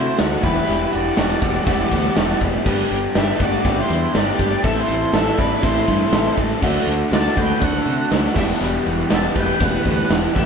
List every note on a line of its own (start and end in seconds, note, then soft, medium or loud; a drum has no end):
0.00 0.10 C3 medium
0.00 0.16 D3 loud
0.00 0.17 A3 medium
0.00 0.18 A3 medium
0.00 0.18 D4 loud
0.00 0.43 D4 medium
0.00 0.15 E4 medium
0.00 0.19 E4 medium
0.00 0.18 F#4 loud
0.00 0.19 F#4 medium
0.00 0.42 F#4 medium
0.00 0.42 A4 medium
0.00 0.15 C5 medium
0.00 0.42 E5 medium
0.18 0.35 D2 medium
0.18 0.42 D3 medium
0.18 0.42 A3 medium
0.18 0.42 D4 medium
0.18 0.42 F#4 medium
0.18 0.44 F#4 medium
0.18 0.45 D5 medium
0.18 0.43 E5 medium
0.18 snare loud
0.18 ride medium
0.42 0.59 E1 medium
0.42 0.65 E2 loud
0.42 0.66 B2 medium
0.42 0.67 E3 medium
0.42 0.67 G3 medium
0.42 2.64 G3 medium
0.42 0.68 B3 loud
0.42 2.64 B3 medium
0.42 0.89 E4 medium
0.42 0.68 E4 medium
0.42 0.68 F#4 medium
0.42 1.03 G4 medium
0.42 0.68 G4 loud
0.42 0.90 B4 loud
0.42 1.03 E5 medium
0.42 2.64 E5 medium
0.42 1.04 F#5 medium
0.42 kick loud
0.42 ride medium
0.67 0.84 E1 medium
0.67 0.93 E2 medium
0.67 0.93 B2 medium
0.67 0.93 E3 medium
0.67 0.93 G3 medium
0.67 1.17 B3 medium
0.67 0.93 E4 medium
0.67 0.93 F#4 medium
0.67 1.18 G4 loud
0.67 ride loud
0.93 1.09 E1 medium
0.93 1.16 E3 soft
0.93 1.17 G3 soft
0.93 1.17 E4 soft
0.93 2.37 F#4 medium
0.93 1.18 F#4 soft
0.93 2.38 D5 medium
0.93 ride medium
1.16 1.34 E1 medium
1.16 1.40 E2 medium
1.16 1.41 B2 medium
1.16 1.42 E3 medium
1.16 1.57 G3 medium
1.16 1.43 G3 medium
1.16 1.43 B3 medium
1.16 1.42 E4 medium
1.16 1.43 G4 medium
1.16 1.57 E5 medium
1.16 1.58 A5 medium
1.16 snare loud
1.16 ride medium
1.41 1.58 E1 medium
1.41 1.65 E2 medium
1.41 1.66 B2 medium
1.41 1.68 E3 soft
1.41 1.68 G3 soft
1.41 1.67 B3 medium
1.41 1.68 E4 soft
1.41 1.68 G4 medium
1.41 kick loud
1.41 ride medium
1.66 1.82 E1 loud
1.66 1.92 E2 medium
1.66 1.93 B2 medium
1.66 1.93 E3 medium
1.66 2.06 G3 medium
1.66 1.93 G3 medium
1.66 2.17 B3 loud
1.66 1.92 E4 loud
1.66 1.92 F#4 loud
1.66 2.17 G4 loud
1.66 2.07 E5 medium
1.66 2.07 F#5 loud
1.66 kick loud
1.66 ride loud
1.92 2.07 D2 medium
1.92 2.16 E3 medium
1.92 2.17 G3 medium
1.92 2.17 E4 medium
1.92 2.17 F#4 medium
1.92 kick medium
1.92 ride medium
2.16 2.32 E1 medium
2.16 2.39 E2 medium
2.16 2.40 B2 medium
2.16 2.41 E3 medium
2.16 2.42 G3 medium
2.16 2.41 B3 medium
2.16 2.41 E4 medium
2.16 2.40 F#4 medium
2.16 2.56 G4 medium
2.16 2.42 G4 medium
2.16 2.56 E5 medium
2.16 2.57 F#5 medium
2.16 snare loud
2.16 ride medium
2.41 2.56 E1 medium
2.41 2.64 E2 loud
2.41 2.65 B2 medium
2.41 2.66 E3 soft
2.41 2.65 G3 medium
2.41 2.65 B3 medium
2.41 2.66 E4 medium
2.41 2.66 F#4 medium
2.41 2.66 G4 loud
2.41 kick medium
2.41 ride medium
2.65 2.81 G1 medium
2.65 2.91 G2 medium
2.65 2.90 D3 loud
2.65 2.91 G3 medium
2.65 4.62 G3 medium
2.65 2.91 B3 medium
2.65 4.62 D4 medium
2.65 2.90 D4 medium
2.65 3.06 G4 loud
2.65 2.90 G4 medium
2.65 3.06 B4 loud
2.65 4.62 D5 medium
2.65 3.06 D5 loud
2.65 kick loud
2.65 crash loud
2.91 3.06 G1 medium
2.91 3.14 G3 soft
2.91 3.16 B3 medium
2.91 3.16 D4 soft
2.91 3.16 G4 soft
2.91 ride medium
3.15 3.31 G1 loud
3.15 3.37 G2 medium
3.15 3.38 D3 medium
3.15 3.40 G3 medium
3.15 3.41 B3 medium
3.15 3.40 D4 medium
3.15 3.55 G4 medium
3.15 3.40 G4 loud
3.15 3.39 G4 medium
3.15 3.55 B4 medium
3.15 3.56 E5 medium
3.15 3.42 E5 medium
3.15 snare loud
3.15 ride loud
3.38 3.55 G1 medium
3.38 3.63 G2 loud
3.38 3.64 D3 medium
3.38 3.66 B3 soft
3.38 3.65 D4 medium
3.38 3.65 G4 medium
3.38 kick loud
3.38 ride medium
3.43 3.66 G3 soft
3.43 3.77 F#4 medium
3.43 3.76 D5 loud
3.65 3.80 G1 loud
3.65 3.91 G2 medium
3.65 3.91 D3 medium
3.65 3.91 G3 medium
3.65 3.91 B3 medium
3.65 3.90 D4 medium
3.65 4.05 G4 medium
3.65 3.90 G4 medium
3.65 4.05 B4 medium
3.65 4.05 E5 medium
3.65 kick loud
3.65 ride loud
3.79 4.13 E4 medium
3.79 4.17 C5 loud
3.90 4.05 E2 medium
3.90 4.14 G3 soft
3.90 4.15 B3 medium
3.90 4.15 D4 medium
3.90 4.15 G4 medium
3.90 ride medium
4.14 4.30 G1 medium
4.14 4.38 G2 medium
4.14 4.39 D3 medium
4.14 4.40 G3 medium
4.14 4.40 B3 medium
4.14 4.39 D4 medium
4.14 4.54 G4 medium
4.14 4.61 G4 medium
4.14 4.38 G4 medium
4.14 4.54 B4 medium
4.14 4.65 D5 loud
4.14 4.54 E5 medium
4.14 snare loud
4.14 ride loud
4.39 4.55 G1 medium
4.39 4.62 G2 medium
4.39 4.63 D3 medium
4.39 4.64 G3 soft
4.39 4.64 B3 medium
4.39 4.64 D4 medium
4.39 4.64 G4 medium
4.39 kick medium
4.39 ride medium
4.63 4.79 A1 medium
4.63 4.89 A2 medium
4.63 4.89 E3 medium
4.63 4.89 C4 medium
4.63 6.61 C4 medium
4.63 4.88 E4 medium
4.63 6.61 E4 medium
4.63 4.75 A4 medium
4.63 5.03 A4 loud
4.63 6.61 A4 medium
4.63 4.87 A4 medium
4.63 5.04 C5 medium
4.63 5.04 E5 loud
4.63 6.61 E5 medium
4.63 4.76 E5 loud
4.63 kick loud
4.63 ride medium
4.77 5.11 E4 medium
4.77 5.16 C5 medium
4.88 5.04 A1 medium
4.88 5.12 C4 soft
4.88 5.13 E4 soft
4.88 5.13 A4 soft
4.88 ride medium
5.12 5.29 A1 medium
5.12 5.36 A2 medium
5.12 5.38 E3 medium
5.12 5.37 C4 medium
5.12 5.38 E4 medium
5.12 5.36 A4 medium
5.12 5.54 A4 medium
5.12 5.37 A4 medium
5.12 5.54 C5 medium
5.12 5.40 E5 medium
5.12 5.54 E5 medium
5.12 snare loud
5.12 ride loud
5.37 5.54 A1 medium
5.37 5.61 A2 medium
5.37 5.62 E3 medium
5.37 5.63 C4 soft
5.37 5.61 D4 medium
5.37 5.63 E4 soft
5.37 5.62 A4 medium
5.37 5.64 B4 medium
5.37 kick loud
5.37 ride medium
5.63 5.78 A1 loud
5.63 5.88 A2 medium
5.63 5.88 E3 medium
5.63 5.88 C4 medium
5.63 6.33 E4 medium
5.63 5.88 E4 medium
5.63 6.03 A4 medium
5.63 5.87 A4 medium
5.63 6.34 C5 medium
5.63 6.04 C5 medium
5.63 6.04 E5 medium
5.63 kick loud
5.63 ride loud
5.88 6.03 G2 medium
5.88 6.13 C4 soft
5.88 6.13 E4 medium
5.88 6.13 A4 medium
5.88 kick medium
5.88 ride medium
6.12 6.28 A1 medium
6.12 6.35 A2 medium
6.12 6.37 E3 medium
6.12 6.36 C4 medium
6.12 6.37 E4 medium
6.12 6.53 A4 medium
6.12 6.37 A4 medium
6.12 6.53 C5 medium
6.12 6.53 E5 medium
6.12 snare loud
6.12 ride loud
6.36 6.53 A1 medium
6.36 6.60 A2 medium
6.36 6.60 E3 medium
6.36 6.62 C4 medium
6.36 6.63 E4 medium
6.36 6.62 A4 medium
6.36 kick medium
6.36 ride medium
6.62 6.78 D2 medium
6.62 6.87 D3 medium
6.62 6.87 F#3 medium
6.62 6.87 A3 loud
6.62 6.88 D4 loud
6.62 8.36 D4 medium
6.62 6.87 E4 loud
6.62 7.11 F#4 loud
6.62 7.03 F#4 loud
6.62 8.35 F#4 medium
6.62 8.36 A4 medium
6.62 7.03 D5 loud
6.62 7.03 E5 loud
6.62 8.35 E5 medium
6.62 kick loud
6.62 crash loud
6.87 7.02 D2 medium
6.87 7.12 A3 soft
6.87 7.13 D4 soft
6.87 7.12 E4 soft
6.87 ride medium
7.10 7.27 D2 loud
7.10 7.35 D3 medium
7.10 7.37 F#3 medium
7.10 7.35 A3 medium
7.10 7.35 D4 medium
7.10 7.36 F#4 medium
7.10 7.52 F#4 medium
7.10 7.52 D5 medium
7.10 7.36 D5 medium
7.10 7.53 E5 medium
7.10 7.37 A5 loud
7.10 snare loud
7.10 ride loud
7.15 7.35 E4 medium
7.36 7.52 D2 medium
7.36 7.59 D3 medium
7.36 7.62 A3 soft
7.36 7.62 D4 medium
7.36 7.61 E4 medium
7.36 7.60 F#4 loud
7.36 7.61 G5 loud
7.36 kick loud
7.36 ride medium
7.41 7.62 B4 medium
7.61 7.77 D2 loud
7.61 7.87 D3 medium
7.61 7.87 F#3 medium
7.61 7.87 A3 medium
7.61 7.86 D4 medium
7.61 7.85 E4 medium
7.61 8.10 F#4 loud
7.61 8.02 F#4 medium
7.61 8.09 A4 medium
7.61 8.02 D5 medium
7.61 8.08 F#5 medium
7.61 8.02 F#5 medium
7.61 kick loud
7.61 ride medium
7.86 8.01 C3 medium
7.86 8.10 A3 soft
7.86 8.11 D4 medium
7.86 8.12 E4 medium
7.86 ride medium
8.10 8.27 D2 medium
8.10 8.34 D3 medium
8.10 8.36 F#3 medium
8.10 8.34 A3 medium
8.10 8.36 D4 medium
8.10 8.35 F#4 medium
8.10 8.37 F#4 medium
8.10 8.37 D5 medium
8.10 snare loud
8.10 ride medium
8.14 8.36 F#5 medium
8.34 8.51 E1 medium
8.34 8.58 E2 loud
8.34 8.59 B2 loud
8.34 8.59 E3 loud
8.34 8.60 G3 soft
8.34 8.60 B3 medium
8.34 8.60 E4 medium
8.34 8.61 F#4 medium
8.34 8.42 G4 medium
8.34 8.61 G4 loud
8.34 8.96 G4 medium
8.34 10.46 G4 medium
8.34 8.43 E5 loud
8.34 8.97 E5 medium
8.34 10.46 F#5 medium
8.34 8.97 F#5 medium
8.34 kick loud
8.34 crash medium
8.38 10.36 E3 medium
8.38 10.46 E4 medium
8.38 10.46 B4 medium
8.60 8.76 E1 medium
8.60 8.86 E2 medium
8.60 8.86 B2 medium
8.60 9.09 E3 loud
8.60 8.86 G3 medium
8.60 8.86 B3 medium
8.60 8.85 E4 medium
8.60 8.84 F#4 medium
8.60 9.11 G4 loud
8.86 9.02 E1 medium
8.86 9.09 G3 soft
8.86 9.10 B3 soft
8.86 9.11 E4 medium
8.86 9.11 F#4 medium
8.86 ride medium
9.09 9.27 E1 loud
9.09 9.33 E2 medium
9.09 9.33 B2 medium
9.09 9.34 E3 medium
9.09 9.36 G3 medium
9.09 9.35 B3 medium
9.09 9.34 E4 medium
9.09 9.33 F#4 medium
9.09 9.35 G4 loud
9.09 9.51 G4 medium
9.09 9.52 E5 medium
9.09 9.52 F#5 medium
9.09 snare loud
9.09 ride loud
9.14 9.21 E5 loud
9.14 9.22 A5 medium
9.34 9.51 E1 medium
9.34 9.57 E2 medium
9.34 9.58 B2 medium
9.34 9.58 E3 medium
9.34 9.59 G3 medium
9.34 9.60 B3 soft
9.34 9.61 E4 medium
9.34 9.60 F#4 soft
9.34 9.60 G4 medium
9.34 9.60 B4 medium
9.34 kick medium
9.34 ride medium
9.40 9.63 G5 loud
9.59 9.76 E1 medium
9.59 9.86 E2 medium
9.59 9.86 B2 medium
9.59 10.10 E3 loud
9.59 9.86 G3 medium
9.59 9.86 B3 medium
9.59 9.86 E4 medium
9.59 9.85 F#4 medium
9.59 10.11 G4 loud
9.59 10.01 G4 medium
9.59 10.01 E5 medium
9.59 10.01 F#5 medium
9.59 kick loud
9.59 ride loud
9.64 10.09 B4 medium
9.64 10.09 F#5 medium
9.85 10.01 D2 medium
9.85 10.09 G3 soft
9.85 10.11 B3 soft
9.85 10.11 F#4 medium
9.85 kick medium
9.85 ride medium
10.10 10.25 E1 medium
10.10 10.33 E2 medium
10.10 10.33 B2 medium
10.10 10.34 E3 medium
10.10 10.36 G3 medium
10.10 10.36 B3 medium
10.10 10.35 E4 medium
10.10 10.35 F#4 medium
10.10 10.46 G4 medium
10.10 10.35 G4 medium
10.10 10.46 E5 medium
10.10 10.46 F#5 medium
10.10 snare loud
10.10 ride loud
10.34 10.46 A1 loud
10.34 10.46 E2 medium
10.34 10.46 B2 medium
10.34 10.46 E3 loud
10.34 10.46 B3 soft
10.34 10.46 E4 medium
10.34 10.46 F#4 medium
10.34 10.46 G4 medium
10.34 10.46 G4 loud
10.34 10.46 E5 loud
10.34 kick medium
10.34 ride medium
10.38 10.46 G3 soft